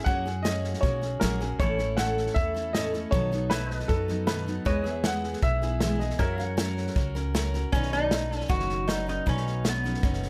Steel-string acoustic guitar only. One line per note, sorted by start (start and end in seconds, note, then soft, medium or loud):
0.06 0.25 F#3 medium
0.06 0.25 A#3 medium
0.06 0.26 C#4 medium
0.06 0.25 F#4 medium
0.06 0.24 G#4 medium
0.25 0.44 C#4 soft
0.25 0.44 F#4 medium
0.25 0.44 G#4 medium
0.44 0.83 F#3 medium
0.44 0.81 A#3 medium
0.44 0.84 C#4 medium
0.44 0.83 F#4 medium
0.44 0.84 G#4 medium
0.82 1.02 A#3 medium
0.82 1.03 C#4 medium
0.82 1.02 F#4 medium
0.82 1.00 G#4 medium
1.01 1.21 C#4 soft
1.01 1.22 F#4 soft
1.01 1.21 G#4 soft
1.21 1.40 F#3 medium
1.21 1.41 A#3 medium
1.21 1.41 C#4 medium
1.21 1.41 F#4 medium
1.21 1.39 G#4 medium
1.40 1.60 C#4 soft
1.40 1.60 F#4 soft
1.40 1.59 G#4 medium
1.60 1.79 A2 medium
1.60 1.79 E3 medium
1.60 1.79 A3 medium
1.60 1.79 C#4 medium
1.60 1.78 E4 medium
1.60 1.77 A4 medium
1.79 1.98 A3 soft
1.79 1.99 C#4 soft
1.79 1.98 E4 soft
1.79 1.98 A4 medium
1.98 2.36 A2 medium
1.98 2.37 E3 medium
1.98 2.35 A3 medium
1.98 2.35 C#4 medium
1.98 2.35 E4 medium
1.98 2.37 A4 medium
2.35 2.55 A3 medium
2.35 2.55 C#4 medium
2.35 2.54 E4 medium
2.35 2.53 A4 medium
2.54 2.74 A3 soft
2.54 2.75 C#4 soft
2.54 2.75 E4 soft
2.54 2.74 A4 medium
2.75 2.94 A2 medium
2.75 2.94 E3 medium
2.75 2.94 A3 medium
2.75 2.94 C#4 medium
2.75 2.93 E4 medium
2.75 2.92 A4 medium
2.94 3.13 A3 soft
2.94 3.13 C#4 soft
2.94 3.13 E4 medium
2.94 3.13 A4 soft
3.13 3.32 B2 medium
3.13 3.32 D#3 medium
3.13 3.32 F#3 medium
3.13 3.32 B3 medium
3.13 3.31 D#4 medium
3.13 3.30 A4 medium
3.32 3.51 F#3 soft
3.32 3.51 B3 soft
3.32 3.51 D#4 medium
3.32 3.51 A4 medium
3.51 3.89 B2 medium
3.51 3.90 D#3 medium
3.51 3.88 F#3 medium
3.51 3.89 B3 medium
3.51 3.89 D#4 medium
3.51 3.90 A4 medium
3.89 4.08 F#3 medium
3.89 4.09 B3 medium
3.89 4.08 D#4 medium
3.89 4.07 A4 medium
4.08 4.26 F#3 soft
4.08 4.26 B3 soft
4.08 4.27 D#4 soft
4.08 4.27 A4 soft
4.27 4.46 B2 medium
4.27 4.47 D#3 medium
4.27 4.47 F#3 medium
4.27 4.47 B3 medium
4.27 4.47 D#4 medium
4.27 4.45 A4 medium
4.46 4.65 F#3 soft
4.46 4.65 B3 soft
4.46 4.66 D#4 soft
4.46 4.66 A4 soft
4.65 4.85 E3 medium
4.65 4.85 G#3 medium
4.65 4.85 B3 medium
4.65 4.84 E4 medium
4.65 4.83 G#4 medium
4.84 5.04 B3 soft
4.84 5.04 E4 soft
4.84 5.04 G#4 medium
5.04 5.42 E3 medium
5.04 5.41 G#3 medium
5.04 5.42 B3 medium
5.04 5.43 E4 medium
5.04 5.43 G#4 medium
5.42 5.62 G#3 medium
5.42 5.62 B3 medium
5.42 5.62 E4 medium
5.42 5.61 G#4 medium
5.62 5.81 B3 soft
5.62 5.82 E4 soft
5.62 5.81 G#4 soft
5.81 6.01 E3 medium
5.81 6.01 G#3 medium
5.81 6.01 B3 medium
5.81 6.00 E4 medium
5.81 5.99 G#4 medium
6.00 6.19 B3 soft
6.00 6.20 E4 soft
6.00 6.20 G#4 medium
6.19 6.38 F#3 medium
6.19 6.39 C#4 medium
6.19 6.38 F#4 medium
6.19 6.37 A#4 loud
6.38 6.56 C#4 soft
6.38 6.57 F#4 soft
6.38 6.57 A#4 medium
6.57 6.94 F#3 medium
6.57 6.95 C#4 medium
6.57 6.96 F#4 medium
6.57 6.96 A#4 medium
6.95 7.15 F#3 medium
6.95 7.15 C#4 medium
6.95 7.15 F#4 medium
6.95 7.14 A#4 medium
7.15 7.33 C#4 medium
7.15 7.34 F#4 medium
7.15 7.34 A#4 medium
7.35 7.54 F#3 medium
7.35 7.54 C#4 medium
7.35 7.54 F#4 medium
7.35 7.53 A#4 medium
7.54 7.74 C#4 soft
7.54 7.74 F#4 medium
7.54 7.73 A#4 medium
7.74 8.12 B2 medium
7.74 8.12 D#3 medium
7.74 8.11 F#3 medium
7.74 8.11 C#4 medium
7.74 8.12 D#4 medium
7.74 8.13 B4 medium
8.11 8.49 F#3 soft
8.11 8.49 C#4 medium
8.11 8.50 D#4 medium
8.11 8.49 B4 medium
8.48 8.87 B2 medium
8.48 8.88 D#3 medium
8.48 8.87 F#3 medium
8.48 8.87 C#4 medium
8.48 8.89 D#4 medium
8.48 8.89 B4 medium
8.87 9.07 F#3 medium
8.87 9.07 C#4 medium
8.87 9.06 D#4 medium
8.87 9.05 B4 medium
9.07 9.25 F#3 soft
9.07 9.26 C#4 soft
9.07 9.26 D#4 soft
9.07 9.26 B4 medium
9.26 9.65 B2 medium
9.26 9.65 D#3 medium
9.26 9.64 F#3 medium
9.26 9.63 C#4 medium
9.26 9.65 D#4 medium
9.26 9.66 B4 medium
9.64 9.84 F#3 soft
9.64 9.84 C#4 medium
9.64 9.84 D#4 medium
9.64 9.83 B4 medium
9.84 10.03 F#3 soft
9.84 10.03 C#4 soft
9.84 10.03 D#4 soft
9.84 10.03 B4 soft
10.03 10.29 B2 medium
10.03 10.29 D#3 medium
10.03 10.29 F#3 medium
10.03 10.29 C#4 medium
10.03 10.29 D#4 medium
10.03 10.29 B4 medium